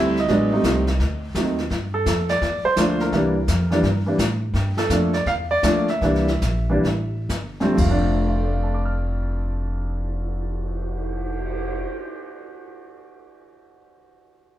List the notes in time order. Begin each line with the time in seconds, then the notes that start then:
Already playing: D2 G3 A3 C4 E4 E5
0.16 D#5, snare
0.28 A1 F#3 G#3 B3 D4, brush sweep, kick, snare
0.52 G3 A3 C4 D#4
0.64 C2, kick, snare, hi-hat pedal
0.87 snare
0.99 D2, brush sweep, kick, snare
1.35 D#2 F#3 A3 C4 D#4, kick, snare, hi-hat pedal
1.58 snare
1.70 G2, brush sweep, kick, snare
1.94 A4
2.06 F2, kick, snare, hi-hat pedal
2.29 D5, snare
2.41 E2, brush sweep, kick, snare
2.63 C5, muted upright bass stroke
2.76 D2 F3 A3 A#3 D4, kick, snare, hi-hat pedal
3.00 A#4, snare
3.12 C2 E3 G3 A#3 D4, brush sweep, kick, snare
3.48 F2, kick, snare, hi-hat pedal
3.71 E3 G3 A#3 D4, snare
3.83 G2, brush sweep, kick, snare
4.06 E3 G3 A#3 D4
4.18 A2, kick, snare, hi-hat pedal
4.54 G2, brush sweep, kick, snare
4.77 A4, snare
4.89 F2 F3 A3 A#3 D4, kick, snare, hi-hat pedal
5.13 D5, snare
5.26 E2 F5, brush sweep, kick, snare
5.51 D5
5.63 D2 F3 A3 A#3 D4, kick, snare, hi-hat pedal
5.88 E5, snare
6.01 C2 E3 G3 A#3 D4, brush sweep, kick, snare
6.15 snare
6.28 snare
6.42 A#1, kick, snare, hi-hat pedal
6.70 E3 G3 A#3 D4
6.83 A1, brush sweep, kick, snare
7.29 G1, kick, snare, hi-hat pedal
7.60 F2 D3 G3 A3 C4, snare
7.66 F2
7.74 F1 F3, kick, crash
7.80 A3 F5
7.91 D4
8.11 cymbal swell
8.29 F4
8.36 A4
8.44 D5
8.53 F5
8.63 A5
8.74 D6
8.85 F6